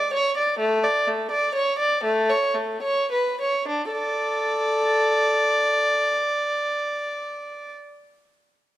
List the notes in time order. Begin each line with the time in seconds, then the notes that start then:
Already playing: D5
0.14 C#5
0.37 D5
0.59 A3
0.84 D5
1.08 A3
1.31 D5
1.55 C#5
1.79 D5
2.04 A3
2.30 C#5
2.55 A3
2.83 C#5
3.12 B4
3.41 C#5
3.68 D4
3.92 A4 D5